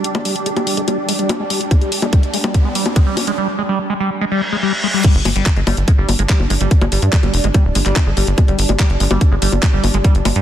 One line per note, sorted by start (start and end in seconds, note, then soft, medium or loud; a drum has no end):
0.00 3.38 G3 medium
0.00 3.38 D4 medium
0.00 3.38 G4 medium
0.00 3.38 G5 medium
0.00 riser medium
0.04 closed hi-hat medium
0.15 0.19 G#3 medium
0.15 closed hi-hat soft
0.15 high bongo medium
0.25 0.35 G3 medium
0.25 open hi-hat loud
0.36 closed hi-hat medium
0.46 0.50 G#3 medium
0.46 closed hi-hat medium
0.57 0.66 G3 medium
0.57 closed hi-hat soft
0.57 high bongo soft
0.67 open hi-hat loud
0.77 0.81 G#3 medium
0.77 closed hi-hat medium
0.88 0.98 G3 medium
0.88 closed hi-hat medium
0.88 high bongo soft
1.09 1.13 G#3 medium
1.09 open hi-hat loud
1.19 1.29 G3 medium
1.19 closed hi-hat medium
1.29 closed hi-hat medium
1.29 high bongo medium
1.40 1.44 G#3 medium
1.50 1.60 G3 medium
1.50 open hi-hat loud
1.61 closed hi-hat medium
1.71 1.75 G#3 medium
1.71 kick loud
1.71 closed hi-hat medium
1.71 high bongo soft
1.82 1.91 G3 medium
1.82 closed hi-hat soft
1.92 open hi-hat loud
2.02 2.06 G#3 medium
2.02 closed hi-hat medium
2.02 high bongo soft
2.13 2.23 G3 medium
2.13 kick loud
2.13 closed hi-hat medium
2.23 closed hi-hat soft
2.34 2.38 G#3 medium
2.34 open hi-hat loud
2.44 2.54 G3 medium
2.44 closed hi-hat medium
2.44 high bongo medium
2.54 kick loud
2.54 closed hi-hat medium
2.65 2.69 G#3 medium
2.75 2.85 G3 medium
2.75 open hi-hat loud
2.86 closed hi-hat medium
2.86 high bongo soft
2.96 3.00 G#3 medium
2.96 kick loud
2.96 closed hi-hat medium
3.07 3.16 G3 medium
3.17 open hi-hat loud
3.17 high bongo soft
3.27 3.31 G#3 medium
3.27 closed hi-hat medium
3.38 3.48 G3 medium
3.59 3.63 G#3 medium
3.69 3.79 G3 medium
3.90 3.94 G#3 medium
4.00 4.10 G3 medium
4.21 4.25 G#3 medium
4.21 reverse cymbal medium
4.32 4.41 G3 medium
4.52 4.56 G#3 medium
4.63 4.73 G3 medium
4.84 4.88 G#3 medium
4.94 5.04 G3 medium
5.04 10.42 G3 medium
5.04 10.42 D4 medium
5.04 kick loud
5.04 closed hi-hat medium
5.04 crash loud
5.04 impact medium
5.15 5.22 G1 medium
5.15 closed hi-hat soft
5.25 5.32 G1 loud
5.25 5.29 G#3 medium
5.25 open hi-hat loud
5.25 high bongo soft
5.36 5.43 G1 medium
5.36 5.46 G3 medium
5.36 closed hi-hat medium
5.46 kick loud
5.46 clap loud
5.46 closed hi-hat medium
5.56 5.63 G1 medium
5.56 5.61 G#3 medium
5.56 closed hi-hat soft
5.67 5.74 G1 loud
5.67 5.77 G3 medium
5.67 open hi-hat loud
5.67 high bongo medium
5.77 5.84 G1 medium
5.77 closed hi-hat medium
5.88 5.92 G#3 medium
5.88 kick loud
5.88 closed hi-hat medium
5.98 6.05 G1 medium
5.98 6.08 G3 medium
6.09 6.15 G1 loud
6.09 open hi-hat loud
6.09 high bongo soft
6.19 6.26 G1 medium
6.19 6.23 G#3 medium
6.19 closed hi-hat medium
6.29 6.39 G3 medium
6.29 kick loud
6.29 clap loud
6.29 closed hi-hat medium
6.40 6.47 G1 medium
6.40 high bongo soft
6.50 6.57 G1 loud
6.50 6.54 G#3 medium
6.50 open hi-hat loud
6.61 6.68 G1 loud
6.61 6.71 G3 medium
6.61 closed hi-hat medium
6.71 kick loud
6.71 closed hi-hat medium
6.81 6.88 G1 medium
6.81 6.86 G#3 medium
6.81 closed hi-hat soft
6.81 high bongo medium
6.92 6.99 G1 loud
6.92 7.02 G3 medium
6.92 open hi-hat loud
7.02 7.09 G2 medium
7.02 closed hi-hat medium
7.13 7.17 G#3 medium
7.13 kick loud
7.13 clap loud
7.13 closed hi-hat medium
7.23 7.30 G1 medium
7.23 7.33 G3 medium
7.23 closed hi-hat soft
7.23 high bongo soft
7.34 7.40 F1 loud
7.34 open hi-hat loud
7.44 7.51 G1 medium
7.44 7.48 G#3 medium
7.44 closed hi-hat medium
7.54 7.64 G3 medium
7.54 kick loud
7.54 closed hi-hat medium
7.54 high bongo soft
7.65 7.72 D1 medium
7.75 7.82 G1 loud
7.75 7.79 G#3 medium
7.75 open hi-hat loud
7.86 7.93 G1 medium
7.86 7.96 G3 medium
7.86 clap soft
7.86 closed hi-hat medium
7.96 kick loud
7.96 clap loud
7.96 closed hi-hat medium
7.96 high bongo medium
8.06 8.13 G1 medium
8.06 8.11 G#3 medium
8.17 8.24 G1 loud
8.17 8.27 G3 medium
8.17 open hi-hat medium
8.27 8.34 G1 loud
8.27 closed hi-hat medium
8.38 8.42 G#3 medium
8.38 kick loud
8.38 closed hi-hat medium
8.38 high bongo soft
8.48 8.55 G1 medium
8.48 8.58 G3 medium
8.48 closed hi-hat soft
8.59 8.65 G1 loud
8.59 open hi-hat loud
8.69 8.76 G1 loud
8.69 8.73 G#3 medium
8.69 closed hi-hat medium
8.69 high bongo soft
8.79 8.89 G3 medium
8.79 kick loud
8.79 clap loud
8.79 closed hi-hat medium
8.90 8.97 G1 medium
8.90 closed hi-hat soft
9.00 9.07 G1 loud
9.00 9.04 G#3 medium
9.00 open hi-hat loud
9.11 9.18 G1 medium
9.11 9.21 G3 medium
9.11 closed hi-hat medium
9.11 high bongo medium
9.21 kick loud
9.21 closed hi-hat medium
9.31 9.38 G1 medium
9.31 9.36 G#3 medium
9.42 9.49 G1 loud
9.42 9.52 G3 medium
9.42 open hi-hat loud
9.52 9.59 G1 medium
9.52 closed hi-hat medium
9.52 high bongo soft
9.63 9.67 G#3 medium
9.63 kick loud
9.63 clap loud
9.63 closed hi-hat medium
9.73 9.80 G1 medium
9.73 9.83 G3 medium
9.84 9.91 G1 loud
9.84 open hi-hat loud
9.84 high bongo soft
9.94 10.01 G1 medium
9.94 9.98 G#3 medium
9.94 closed hi-hat medium
10.04 10.14 G3 medium
10.04 kick loud
10.04 closed hi-hat medium
10.15 10.22 G1 medium
10.15 closed hi-hat soft
10.25 10.32 G1 loud
10.25 10.29 G#3 medium
10.25 open hi-hat loud
10.25 high bongo medium
10.36 10.42 G2 medium
10.36 10.42 G3 medium
10.36 closed hi-hat medium